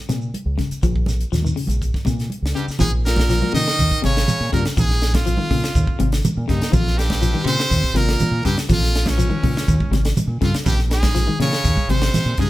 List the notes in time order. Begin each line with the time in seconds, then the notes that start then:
0.09 A#2 C3, snare, closed hi-hat, high conga, shekere
0.21 shekere
0.34 closed hi-hat, high conga
0.46 C#2
0.58 C#3, kick, snare, closed hi-hat, high conga, shekere
0.71 muted fingered electric bass stroke, closed hi-hat, shekere
0.83 A#1 F3, kick, closed hi-hat, shekere
0.96 kick
1.06 snare, closed hi-hat, high conga, shekere
1.21 closed hi-hat, shekere
1.32 D#2 F3, snare, closed hi-hat, shekere
1.42 D#3, high conga, shekere
1.56 C#3, open hi-hat, shekere
1.67 A#1, closed hi-hat, high conga, shekere
1.82 kick, closed hi-hat, shekere
1.94 kick, snare
2.05 A#2 C3, kick, snare, closed hi-hat, high conga, shekere
2.19 snare, closed hi-hat, shekere
2.30 closed hi-hat, high conga
2.42 C#2, snare
2.55 G2 C#3 G4, closed hi-hat, shekere
2.68 muted fingered electric bass stroke, snare, shekere
2.79 A#1 G#2 F3 G#4, kick, closed hi-hat, high conga, low conga, shekere
3.05 A#2 A#4, snare, closed hi-hat, shekere
3.16 kick, snare, high conga
3.29 F3, snare, closed hi-hat, high conga, shekere
3.42 F3, high conga
3.53 A#2 C#3 D#3 D#5, snare, closed hi-hat, low conga, shekere
3.68 snare
3.79 D#2, kick, closed hi-hat, shekere
3.91 muted fingered electric bass stroke, kick
4.02 G#1 C3 C#3 C#5, snare, closed hi-hat, high conga, shekere
4.17 snare
4.28 closed hi-hat, high conga, low conga, shekere
4.41 A#2
4.52 G2 A#2 C#3 A#4, kick, closed hi-hat, shekere
4.65 muted fingered electric bass stroke, snare, closed hi-hat
4.77 A#1 G#2 G#4, muted clean electric guitar stroke, kick, closed hi-hat, high conga, low conga, shekere
4.90 snare
5.02 snare, closed hi-hat, shekere
5.14 F2 F4, kick, snare, closed hi-hat, high conga
5.26 F3, closed hi-hat, high conga, shekere
5.37 D#3, high conga
5.51 A#2 C#3, kick, open hi-hat, shekere
5.64 snare
5.74 D#2, kick, closed hi-hat, high conga, shekere
5.87 muted fingered electric bass stroke, kick
5.99 G#1 C3, closed hi-hat, high conga, shekere
6.12 snare, closed hi-hat
6.25 closed hi-hat, high conga, low conga, shekere
6.37 A#2
6.48 D#2 G2 C#3 D#4, kick, snare, closed hi-hat, shekere
6.61 muted fingered electric bass stroke, snare, closed hi-hat
6.70 A#1 F2 F3 F4, kick, closed hi-hat, high conga, low conga, shekere
6.87 snare
6.96 G2 G4, snare, closed hi-hat, shekere
7.10 kick, snare, high conga
7.22 F3, closed hi-hat, high conga, shekere
7.34 D#3, high conga
7.43 A#2 C3 C#3 C5, closed hi-hat
7.48 shekere
7.60 snare
7.71 D#2, kick, closed hi-hat, shekere
7.84 muted fingered electric bass stroke, kick
7.94 G#1 A#2 C3 A#4, snare, closed hi-hat, high conga, shekere
8.09 snare
8.20 closed hi-hat, high conga, low conga, shekere
8.32 A#2
8.44 G2 C#3 G4, kick, closed hi-hat, shekere
8.55 muted fingered electric bass stroke, snare, closed hi-hat
8.69 A#1 F2 F3 F4, kick, snare, closed hi-hat, high conga, low conga, shekere
8.83 snare
8.95 snare, closed hi-hat, shekere
9.06 C#2 C#4, kick, snare, closed hi-hat, high conga
9.18 F3, closed hi-hat, high conga, shekere
9.30 D#3, high conga
9.43 A#2 C#3, kick, open hi-hat, low conga, shekere
9.57 snare
9.68 D#2, kick, closed hi-hat, shekere
9.80 muted fingered electric bass stroke, kick, high conga
9.91 G#1 C3, snare, closed hi-hat, high conga, shekere
10.05 snare, closed hi-hat
10.17 closed hi-hat, high conga, low conga, shekere
10.27 A#2
10.41 F2 G2 C#3 F4, kick, closed hi-hat, shekere
10.54 muted fingered electric bass stroke, snare, closed hi-hat
10.64 A#1 G2 G4, muted clean electric guitar stroke, kick, closed hi-hat, high conga, low conga, shekere
10.79 snare
10.89 G#2, snare, closed hi-hat, shekere
10.93 G#4
11.03 kick, snare, high conga
11.15 F3, snare, closed hi-hat, shekere
11.28 D#3, high conga
11.40 A#2 C#3 C#5, snare, closed hi-hat, low conga, shekere
11.53 snare
11.64 D#2, kick, closed hi-hat, shekere
11.77 muted fingered electric bass stroke, kick, high conga
11.88 G#1 C3 C5, closed hi-hat, high conga, shekere
12.02 snare
12.14 snare, closed hi-hat, high conga, low conga, shekere
12.26 A#2
12.38 G2 G#2 C#3 G#4, kick, closed hi-hat, high conga, shekere